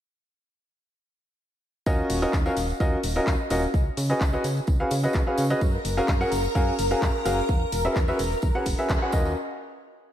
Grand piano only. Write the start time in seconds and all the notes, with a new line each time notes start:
1.86 C#4 F4 F#4 A#4 D#5
2.22 C#4 F4 F#4 A#4 D#5
2.46 C#4 F4 F#4 A#4 F5
2.80 C#4 F4 F#4 A#4 D#5
3.16 C#4 F4 F#4 A#4 D#5
3.50 C#4 F4 F#4 A#4 D#5
4.10 C#4 F#4 G#4 B4 D#5
4.33 C#4 F#4 G#4 B4 D#5
4.80 C#4 F#4 G#4 B4 F5
5.03 C#4 F#4 G#4 B4 D#5
5.27 C#4 F#4 G#4 B4 F5
5.50 C#4 F#4 G#4 B4 D#5
5.97 C#4 F#4 G#4 A#4 F5
6.21 C#4 F#4 G#4 A#4 F#5
6.55 C#4 F#4 G#4 A#4 F5
6.91 C#4 F#4 G#4 A#4 F5
7.25 C#4 F#4 G#4 A#4 F5
7.85 C#4 F#4 G#4 B4 E5
8.08 C#4 F#4 G#4 B4 E5
8.55 C#4 F#4 G#4 B4 F#5
8.78 C#4 F#4 G#4 B4 E5
9.02 C#4 F#4 G#4 B4 F#5
9.13 C#4 F4 F#4 A#4 D#5